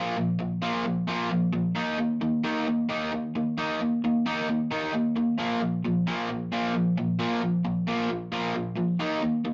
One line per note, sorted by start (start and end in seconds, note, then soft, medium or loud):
0.00 0.16 A#2 medium
0.00 0.16 F3 medium
0.00 0.16 A#3 medium
0.17 0.38 A#2 medium
0.17 0.38 F3 medium
0.39 0.60 A#2 medium
0.39 0.60 F3 medium
0.62 0.84 A#2 medium
0.62 0.84 F3 medium
0.62 0.84 A#3 medium
0.85 1.06 A#2 medium
0.85 1.06 F3 medium
1.07 1.29 A#2 medium
1.07 1.29 F3 medium
1.07 1.30 A#3 medium
1.30 1.51 A#2 medium
1.30 1.51 F3 medium
1.53 1.74 A#2 medium
1.53 1.74 F3 medium
1.75 1.97 D#3 medium
1.75 1.97 A#3 medium
1.75 1.98 D#4 medium
1.98 2.19 D#3 medium
1.98 2.19 A#3 medium
2.21 2.42 D#3 medium
2.21 2.42 A#3 medium
2.44 2.65 D#3 medium
2.44 2.66 A#3 loud
2.44 2.66 D#4 medium
2.67 2.88 D#3 medium
2.67 2.88 A#3 medium
2.89 3.11 D#3 medium
2.89 3.11 A#3 medium
2.89 3.11 D#4 medium
3.12 3.33 D#3 medium
3.12 3.33 A#3 medium
3.35 3.56 D#3 medium
3.35 3.56 A#3 medium
3.58 3.79 D#3 medium
3.58 3.79 A#3 medium
3.58 3.79 D#4 loud
3.80 4.01 D#3 medium
3.80 4.01 A#3 medium
4.04 4.24 D#3 medium
4.04 4.24 A#3 medium
4.26 4.47 D#3 medium
4.26 4.47 A#3 medium
4.26 4.47 D#4 medium
4.49 4.69 D#3 medium
4.49 4.69 A#3 medium
4.71 4.92 D#3 medium
4.71 4.93 A#3 medium
4.71 4.93 D#4 medium
4.93 5.14 D#3 medium
4.93 5.14 A#3 medium
5.17 5.37 D#3 medium
5.17 5.37 A#3 medium
5.39 5.60 A#2 medium
5.39 5.60 F3 medium
5.39 5.61 A#3 loud
5.61 5.82 A#2 medium
5.61 5.82 F3 medium
5.85 6.05 A#2 medium
5.85 6.05 F3 medium
6.07 6.28 A#2 medium
6.07 6.28 F3 medium
6.07 6.29 A#3 medium
6.29 6.50 A#2 medium
6.29 6.50 F3 medium
6.52 6.73 A#2 medium
6.52 6.74 F3 medium
6.52 6.74 A#3 loud
6.74 6.95 A#2 medium
6.74 6.95 F3 medium
6.98 7.18 A#2 medium
6.98 7.18 F3 medium
7.20 7.41 A#2 medium
7.20 7.41 F3 medium
7.20 7.41 A#3 loud
7.42 7.63 A#2 medium
7.42 7.63 F3 medium
7.65 7.85 A#2 medium
7.65 7.85 F3 medium
7.87 8.08 A#2 medium
7.87 8.09 F3 medium
7.87 8.09 A#3 medium
8.09 8.30 A#2 medium
8.09 8.30 F3 medium
8.32 8.54 A#2 medium
8.32 8.54 F3 medium
8.32 8.54 A#3 medium
8.55 8.75 A#2 medium
8.55 8.76 F3 medium
8.76 8.97 A#2 medium
8.76 8.98 F3 medium
9.00 9.21 D#3 medium
9.00 9.21 A#3 medium
9.00 9.21 D#4 medium
9.22 9.43 D#3 medium
9.22 9.43 A#3 medium
9.45 9.54 D#3 medium
9.45 9.54 A#3 medium